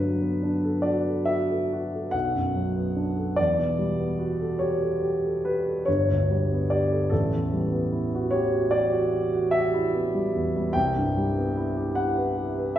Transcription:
Already playing: G2 D3 B4
0.00 F#3
0.22 B3
0.43 D4
0.64 A4
0.82 F#4 D5
1.08 A4
1.25 F#4 E5
1.49 A4
1.73 F#4
1.94 A4
2.11 B1 F#5
2.36 F#2
2.56 F#3
2.76 B3
2.96 D4
3.17 A4
3.36 E2 D5
3.58 B2
3.78 G3
4.00 B3
4.19 F#4
4.40 A4
4.59 G4 C#5
4.81 A4
5.03 G4
5.25 A4
5.45 G4 B4
5.66 A4
5.85 G1 C#5
6.11 D2
6.30 G3
6.52 B3
6.70 G4 D5
6.91 A4
7.10 A1 A4
7.34 E2
7.53 G3
7.72 B3
7.92 E4
8.15 F#4
8.31 G4 C#5
8.54 F#4
8.71 G4 D5
8.93 F#4
9.14 G4
9.34 F#4
9.51 G4 E5
9.74 E4
9.94 B3
10.14 G3
10.36 E2
10.56 G3
10.73 C2 G5
10.96 G2
11.17 G3
11.38 B3
11.57 E4
11.77 G4
11.95 E4 F#5
12.16 B4
12.37 G4
12.58 B4
12.76 E5

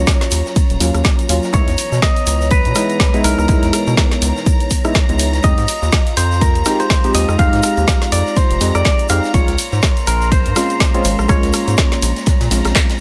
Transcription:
Already playing: F#3 A#3 C#4 F4 C#5 A#5
0.07 kick, snare, closed hi-hat, ride, shaker
0.21 snare, closed hi-hat, ride, shaker
0.30 D#2, open hi-hat, ride, shaker
0.46 snare, shaker
0.56 kick, closed hi-hat, ride, shaker
0.70 D#1, closed hi-hat, shaker
0.80 D#2 F#3 A#3 C#4 F4, open hi-hat, ride, shaker
0.94 D#2, cross-stick, closed hi-hat, shaker
1.04 kick, snare, closed hi-hat, ride, shaker
1.19 closed hi-hat, shaker
1.29 D#2 F#3 A#3 C#4 F4, open hi-hat, ride, shaker
1.43 snare, shaker
1.53 C#2 E3 G#3 B3 D#4 E4 C#5, kick, closed hi-hat, ride, shaker
1.68 E2, snare, closed hi-hat, shaker
1.78 open hi-hat, ride, shaker
1.92 B2, snare, shaker
2.02 D#5, kick, snare, closed hi-hat, ride, shaker
2.16 snare, closed hi-hat, shaker
2.26 C#2, open hi-hat, ride, shaker
2.41 snare, shaker
2.50 B4, kick, closed hi-hat, ride, shaker
2.65 B2, closed hi-hat, shaker
2.75 G#3 B3 D#4 E4, cross-stick, snare, open hi-hat, ride, shaker
2.90 closed hi-hat, shaker
3.00 kick, snare, closed hi-hat, ride, shaker
3.14 G#3 B3 D#4 E4, closed hi-hat, shaker
3.24 B1 A#4, open hi-hat, ride, shaker
3.38 C#2, cross-stick, shaker
3.48 C#2 G#3 B3 D#4 E4, kick, closed hi-hat, ride, shaker
3.63 E2, snare, closed hi-hat, shaker
3.73 cross-stick, open hi-hat, ride, shaker
3.87 B2, ride, shaker
3.97 kick, snare, closed hi-hat, ride, shaker
4.11 snare, closed hi-hat, ride, shaker
4.22 C#2, open hi-hat, ride, shaker
4.36 snare, shaker
4.46 kick, closed hi-hat, ride, shaker
4.60 closed hi-hat, shaker
4.71 kick, open hi-hat, ride, shaker
4.84 G#3 B3 D#4 E4, cross-stick, closed hi-hat, shaker
4.95 kick, snare, closed hi-hat, ride, shaker
5.09 C#2 G#3 B3 D#4 E4, closed hi-hat, shaker
5.19 open hi-hat, ride, shaker
5.33 snare, closed hi-hat, shaker
5.43 F2 G#3 C4 D#4 F4 G4 D#5, kick, closed hi-hat, ride, shaker
5.58 G#2, snare, closed hi-hat, shaker
5.68 open hi-hat, ride, shaker
5.82 D#2, snare, shaker
5.92 kick, snare, closed hi-hat, ride, shaker
6.06 snare, closed hi-hat, shaker
6.17 F2 C5, open hi-hat, ride, shaker
6.31 snare, shaker
6.41 A#4, kick, closed hi-hat, ride, shaker
6.55 D#2, closed hi-hat, shaker
6.65 G#3 C4 D#4 G4, cross-stick, snare, open hi-hat, ride, shaker
6.80 C5, closed hi-hat, shaker
6.90 kick, snare, closed hi-hat, ride, shaker
7.04 G#3 C4 D#4 G4, closed hi-hat, shaker
7.14 D#2 D#5, open hi-hat, ride, shaker
7.29 F2, cross-stick, shaker
7.38 F2 G#3 C4 D#4 G4 F5, kick, closed hi-hat, ride, shaker
7.53 G#2, snare, closed hi-hat, shaker
7.63 cross-stick, open hi-hat, ride, shaker
7.77 D#2, ride, shaker
7.87 kick, snare, closed hi-hat, ride, shaker
8.02 snare, closed hi-hat, ride, shaker
8.12 F2 D5, open hi-hat, ride, shaker
8.26 snare, shaker
8.36 C5, kick, closed hi-hat, ride, shaker
8.51 F1, closed hi-hat, shaker
8.60 F2 G#3 C4 D#4 G4, open hi-hat, ride, shaker
8.75 F2 D5, cross-stick, closed hi-hat, shaker
8.85 kick, snare, closed hi-hat, ride, shaker
8.99 closed hi-hat, shaker
9.09 F2 G#3 C4 D#4 G4 F5, open hi-hat, ride, shaker
9.24 snare, shaker
9.34 A#1 G#3 A#3 C4 C#4 F4 C#5 C6, kick, closed hi-hat, ride, shaker
9.48 C#2, snare, closed hi-hat, shaker
9.58 open hi-hat, ride, shaker
9.72 G#2, snare, shaker
9.82 kick, snare, closed hi-hat, ride, shaker
9.97 snare, closed hi-hat, shaker
10.07 A#1 A#4, open hi-hat, ride, shaker
10.20 snare, shaker
10.32 C5, kick, closed hi-hat, ride, shaker
10.45 G#2, closed hi-hat, shaker
10.56 G#3 C4 C#4 F4, cross-stick, snare, open hi-hat, ride, shaker
10.70 closed hi-hat, shaker
10.80 kick, snare, closed hi-hat, ride, shaker
10.94 G#3 C4 C#4 F4, closed hi-hat, shaker
11.05 G#1, open hi-hat, ride, shaker
11.19 A#1, cross-stick, shaker
11.28 A#1 G#3 A#3 C#4 F4 C#5, kick, cross-stick, closed hi-hat, ride, shaker
11.43 C#2, snare, closed hi-hat, shaker
11.53 cross-stick, open hi-hat, ride, shaker
11.68 G#2, closed hi-hat, ride, shaker
11.77 kick, snare, closed hi-hat, ride, shaker
11.92 snare, closed hi-hat, ride, shaker
12.02 A#1, open hi-hat, ride, shaker
12.16 snare, closed hi-hat, shaker
12.26 kick, snare, closed hi-hat, ride, shaker
12.41 A#2, snare, closed hi-hat, ride, shaker
12.51 A#1 G#3 C4 C#4 F4, snare, open hi-hat, ride, shaker
12.64 A#1, cross-stick, snare, closed hi-hat, ride, shaker
12.75 kick, snare, clap, closed hi-hat, shaker
12.90 snare, closed hi-hat, ride, shaker

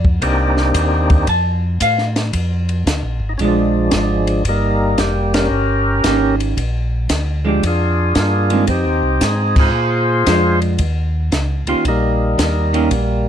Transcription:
Already playing: F2
0.05 kick
0.21 C2 A#3 C4 D4 D#4 G4, kick, ride
0.57 snare
0.74 D#2, kick, hi-hat pedal, ride
1.10 kick, ride
1.27 F2 A5, kick, ride
1.80 A2 F5, kick, hi-hat pedal, ride
1.98 snare
2.16 snare, ride
2.33 F2, kick, ride
2.69 ride
2.86 D2, kick, snare, hi-hat pedal, ride
3.03 A#1
3.20 G#1
3.29 D#4
3.38 A#1 F3 G#3 C#4, kick, ride
3.42 F3 G#3 D4
3.48 D4
3.91 G#1 C#4, kick, snare, hi-hat pedal, ride
3.95 F3 G#3 D4
4.27 ride
4.44 G1, kick, ride
4.48 G3 A#3 D#4
4.98 F1 G4, kick, snare, hi-hat pedal, ride
5.34 C#4 G4 A#4, snare, ride
5.50 G1
6.04 G#1 D#3 A#3 C#4 G4, kick, snare, hi-hat pedal, ride
6.40 ride
6.57 A#1, kick, ride
7.09 D2, kick, snare, hi-hat pedal, ride
7.44 F3 G#3 D4 G4
7.63 F2 D4 G#4, kick, ride
7.67 F4
8.15 G2 A#3 D4 F4, kick, snare, hi-hat pedal, ride
8.50 D#3 G#3 C4, ride
8.67 F2 C4 D#4 G4, kick, ride
8.85 D#2
9.03 C2
9.21 G#2 G#4, kick, snare, hi-hat pedal, ride
9.56 F4 G#4, kick, crash
9.61 C5
9.72 A#2
10.26 F2 F3 G#3 D4, kick, snare, hi-hat pedal, ride
10.62 ride
10.78 D#2, kick, ride
11.32 C#2, kick, snare, hi-hat pedal, ride
11.66 C#2 D#3 A#3 C#4 F4 G4, ride
11.85 A#1 D#4, kick, ride
11.89 G3 A#3
12.38 D#2 A#3, kick, snare, hi-hat pedal, ride
12.42 G3 D#4
12.73 D#3 A#3 C#4 G4, ride
12.91 A#1, kick, ride

